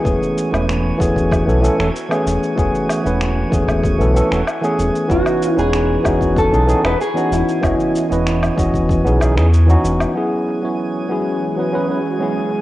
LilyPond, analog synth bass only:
\new Staff \with { instrumentName = "Analog synth bass" } { \clef bass \time 4/4 \key e \major \tempo 4 = 95 e,,16 r8 e,,8 r16 e,,8. b,,16 r16 e,,16 r8 e,,16 r16 | e,,16 r8 e,,8 r16 e,,8. b,,16 r16 e,,16 r8 e,,16 r16 | e,,16 r8 e,,8 r16 e,,8. b,,16 r16 e,,16 r8 e,,16 r16 | e,,16 r8 e,,8 r16 e,,8. b,,8 e,8 r16 e,,16 r16 |
r1 | }